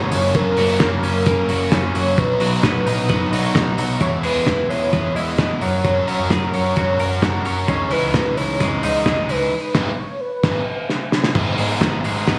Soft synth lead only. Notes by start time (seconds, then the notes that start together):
Already playing: C#5
0.36 A#4
0.81 A#4
1.27 A#4
1.73 C#5
2.19 B4
4.01 C#5
4.25 B4
4.69 C#5
5.15 D#5
5.62 C#5
6.31 A#4
6.53 C#5
7.69 C#5
7.92 B4
8.37 C#5
8.83 D#5
9.30 B4
9.99 C#5
10.20 B4